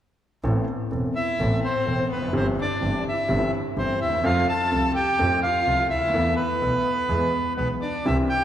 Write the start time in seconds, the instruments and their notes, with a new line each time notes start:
0.44 grand piano A1 A2 E3 B3 C4 A4, double bass A1
0.91 grand piano E1 E2 E3 B3 C4 A4, double bass E1
1.16 violin E4, bandoneon E5
1.40 grand piano A1 A2 E3 B3 C4 A4, double bass A1
1.63 violin C4, bandoneon C5
1.86 grand piano E1 E2 E3 B3 C4 A4, double bass E1
2.10 double bass F1, violin B3, bandoneon B4
2.16 grand piano E2
2.22 grand piano F2
2.27 grand piano F#2
2.33 grand piano G1 G2 E3 G3 C4 G4, double bass G1, violin C4, bandoneon C5
2.59 violin D4, bandoneon D5
2.80 grand piano G1 G2 E3 G3 C4 G4, double bass G1
3.08 violin E4, bandoneon E5
3.28 grand piano G1 G2 E3 G3 C4 G4, double bass G1
3.76 grand piano G1 G2 E3 G3 C4 G4, double bass G1, violin C4, bandoneon C5
4.01 double bass D#2, violin E4, bandoneon E5
4.06 grand piano D2
4.13 grand piano D#2
4.18 grand piano E2
4.24 grand piano F2 F3 A3 C4 A4, double bass F2, violin F4, bandoneon F5
4.48 violin A4, bandoneon A5
4.71 grand piano C2 C3 F3 A3 C4 A4, double bass C2
4.95 violin G4, bandoneon G5
5.18 grand piano F2 F3 A3 C4 A4, double bass F2
5.42 violin F4, bandoneon F5
5.67 double bass C2, grand piano C2 C3 F3 A3 C4 A4
5.90 double bass D2, violin E4, bandoneon E5
5.97 grand piano C#2
6.03 grand piano D2
6.08 grand piano D#2
6.14 double bass E2, grand piano E2 E3 A3 B3 A4
6.36 violin B3, bandoneon B4
6.61 grand piano B1 B2 E3 A3 B3 A4, double bass B1
7.09 grand piano E2 E3 G#3 B3 G#4, double bass E2
7.57 grand piano B1 B2 E3 G#3 B3 G#4, double bass B1, violin B3, bandoneon B4
7.81 violin D4, bandoneon D5
8.05 grand piano C2 C3 E3 G3 C4 G4, double bass C2, violin E4, bandoneon E5
8.29 violin G4, bandoneon G5